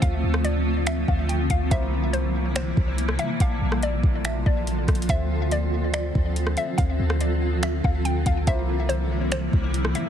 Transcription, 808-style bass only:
0.02 D2
0.23 D2
1.08 D2
1.50 D2
1.71 C2
2.77 C2
3.40 A#1
3.62 A#1
4.04 A#1
4.46 A#1
4.88 A#1
5.09 D2
6.15 D2
6.78 D2
7.00 D2
7.84 D2
8.26 D2
8.47 C2
9.53 C2

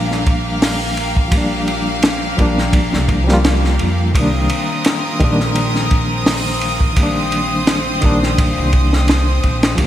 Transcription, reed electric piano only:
Already playing: F3 G3 A#3 D4
1.28 F3 G3
1.34 A#3 D4
2.37 F3 G3 A#3
2.41 D4
3.24 F3 G3
3.30 A#3 F4
4.11 D#3 G3
4.17 A#3 D4
5.20 D#3 G3 A#3
5.24 D4
6.93 D#3 G3
7.00 A#3 D4
8.01 D#3 G3 A#3
8.06 D4
9.75 F3 G3
9.82 A#3

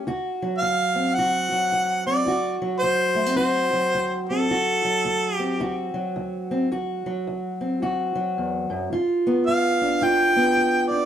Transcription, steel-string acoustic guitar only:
0.07 D2 F#4
0.42 F#3
0.61 D2
0.95 C4
1.18 D2 F#4
1.52 F#3
1.72 D2
2.07 C4
2.26 D2 F#4
2.62 F#3
2.82 D2
3.15 A3
3.26 C4
3.36 D2 F#4
3.73 F#3
3.94 D2
4.30 C4
4.51 D2 F#4
4.85 F#3
5.05 D2
5.39 C4
5.60 D2 F#4
5.94 F#3
6.16 D2
6.51 C4
6.72 D2 F#4
7.06 F#3
7.27 D2
7.61 C4
7.82 D2 F#4
8.15 F#3
8.38 E2
8.70 F#2
8.93 G2 F4
9.27 B3
9.48 G2
9.82 D4
10.01 G2 F4
10.36 B3
10.56 G2
10.91 D4

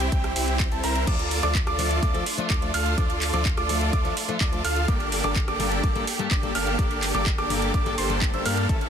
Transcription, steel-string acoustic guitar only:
1.07 F3 A3 D4 A4
1.43 F3 A3 D4 A4
1.78 F3 A3 D4 A4
2.14 F3 A3 D4 A4
2.38 F3 A3 D4 A4
2.62 F3 A3 D4 A4
2.97 F3 A3 D4 A4
3.33 F3 A3 D4 A4
3.69 F3 A3 D4 A4
4.04 F3 A3 D4 A4
4.28 F3 A3 D4 A4
4.52 F3 A3 D4 A4
4.88 G2 G3 A#3 D4 A4
5.23 G2 G3 A#3 D4 A4
5.59 G2 G3 A#3 D4 A4
5.95 G2 G3 A#3 D4 A4
6.19 G2 G3 A#3 D4 A4
6.43 G2 G3 A#3 D4 A4
6.78 G2 G3 A#3 D4 A4
7.14 G2 G3 A#3 D4 A4
7.50 G2 G3 A#3 D4 A4
7.85 G2 G3 A#3 D4 A4
8.09 G2 G3 A#3 D4 A4
8.33 G2 G3 A#3 D4 C5
8.45 G3 A#3 D4 A4
8.69 A2 E3 A3 C#4 A4

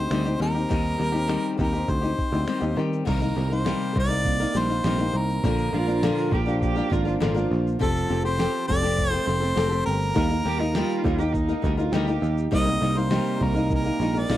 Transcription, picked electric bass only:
0.11 D2
0.40 D#2
0.71 D#2
1.00 D#2
1.59 D#2
1.88 D2
2.19 muted picked electric bass stroke
2.33 D2
2.48 muted picked electric bass stroke
2.62 D#2
2.77 D#3
3.08 C2
3.37 C2
3.96 C2
4.55 A#1
4.84 A#1
5.14 C2
5.44 A#1
5.73 A#1
6.32 A#1
6.92 G#1
7.21 G#1
7.51 A#1
7.81 F1
8.11 F1
8.69 F1
9.27 F1
9.57 F1
9.87 G1
10.16 D#2
10.46 D#2
11.05 D#2
11.64 D2
11.93 D2
12.22 D#2
12.53 C2
12.82 C2
13.41 C2
14.00 A#1
14.30 A#1

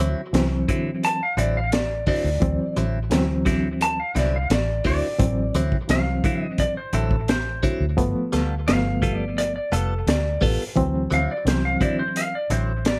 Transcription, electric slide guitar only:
Already playing: F#4
1.05 A5
1.23 F5
1.39 D5
1.57 F5
1.73 D5
2.08 D5
3.82 A5
4.00 F5
4.19 D5
4.36 F5
4.52 D5
4.87 D5
5.91 F5
6.43 D#5
6.60 D5
6.77 C5
6.95 A4
7.30 C5
8.68 F5
9.16 D5
9.38 D5
9.56 D5
9.74 A4
10.08 D5
11.14 F5
11.31 D5
11.48 C5
11.65 F5
11.83 D5
11.99 C5
12.17 F5
12.35 D5
12.54 C5
12.88 D5

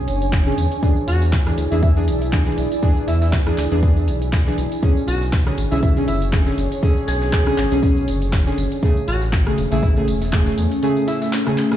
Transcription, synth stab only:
Already playing: D3 C#4 G#4
0.46 D3 C#4 G#4
0.82 E3 D4 G#4
1.46 E3 D4 G#4
1.71 E3 D4 G#4
1.96 E3 D4 G#4
2.32 E3 D4 G#4
2.46 E3 D4 G#4
2.82 E3 D4 G#4
3.46 E3 D4 G#4
3.71 E3 D4 G#4
3.82 E3 D4 G#4
4.46 E3 D4 G#4
4.82 D3 C#4 G#4
5.46 D3 C#4 G#4
5.71 D3 C#4 G#4
5.96 D3 C#4 G#4
6.32 D3 C#4 G#4
6.46 D3 C#4 G#4
6.82 D3 C#4 G#4
7.46 D3 C#4 G#4
7.71 D3 C#4 G#4
7.82 D3 C#4 G#4
8.46 D3 C#4 G#4
8.82 C#3 A3 G#4
9.46 C#3 A3 G#4
9.71 C#3 A3 G#4
9.96 C#3 A3 G#4
10.32 C#3 A3 G#4
10.46 C#3 A3 G#4
10.82 C#3 A3 G#4
11.46 C#3 A3 G#4
11.71 C#3 A3 G#4

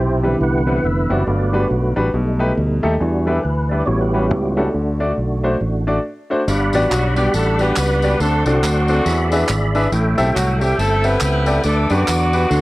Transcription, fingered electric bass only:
Already playing: B1
0.41 C2
0.84 F1
1.10 F#1
1.27 G1
1.71 B1
1.97 A1
2.14 B1
2.57 D2
2.84 D#2
3.01 E2
3.45 D2
3.87 A1
4.31 C#2
4.74 D2
5.17 B1
5.61 A1
6.48 G1
6.74 A1
6.91 B1
7.34 A1
7.77 C#2
8.20 D2
8.46 C2
8.63 D2
9.06 E2
9.49 G#1
9.92 A1
10.18 B1
10.36 C2
10.78 G1
11.21 C#2
11.65 D2
11.90 F#2
12.08 E2
12.51 D2

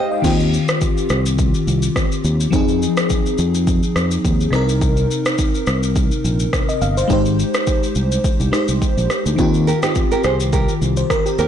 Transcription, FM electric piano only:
Already playing: G#3 D#4 G4 C5 D#5 F5 G5
0.12 D#5
0.22 D#3 C4 F4
0.27 G4
2.50 F3 C4 D#4
2.55 G#4
4.50 C3 C4 D#4
4.55 A#4
6.69 D#5
6.82 F5
6.97 C5
7.08 G#3 D#4 G4
7.13 C5
8.52 G#3 D#4 G4 C5
9.36 D#3 C4 F4
9.41 G4
10.97 C5
11.10 A#4
11.26 G4

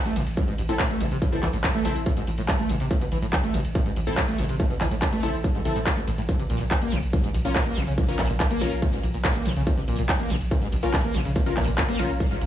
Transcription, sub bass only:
0.16 A1
0.27 A1
0.58 A1
0.69 A1
1.01 A1
1.11 A1
1.43 A1
1.53 A1
1.85 A1
1.96 A1
2.27 A1
2.38 A1
2.70 A1
2.80 A1
3.12 A1
3.23 A1
3.54 A1
3.65 A1
3.96 A1
4.07 A1
4.39 A1
4.49 A1
4.81 A1
4.91 A1
5.23 A1
5.34 A1
5.65 A1
5.76 A1
6.07 A1
6.18 A1
6.50 A#1
6.60 A#1
6.92 A#1
7.03 A#1
7.34 A#1
7.45 A#1
7.77 A#1
7.87 A#1
8.19 A#1
8.29 A#1
8.61 A#1
8.72 A#1
9.03 A#1
9.14 A#1
9.45 A#1
9.56 A#1
9.88 A#1
9.99 A#1
10.30 A#1
10.41 A#1
10.72 A#1
10.83 A#1
11.15 A#1
11.25 A#1
11.57 A#1
11.68 A#1
11.99 A#1
12.10 A#1
12.41 A#1

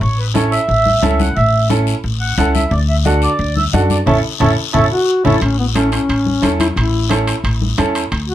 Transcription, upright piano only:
0.34 C#4 E4 A4
1.02 C#4 E4 A4
1.70 C#4 E4 A4
2.38 C#4 E4 A4
3.05 D4 F#4 A4
3.73 D4 F#4 A4
4.07 C#4 E4 A4
4.40 C#4 E4 A4
4.73 C#4 E4 A4
5.25 C#4 E4 A4
5.75 C#4 E4 A4
6.42 C#4 E4 A4
7.09 C#4 E4 A4
7.78 C#4 E4 A4

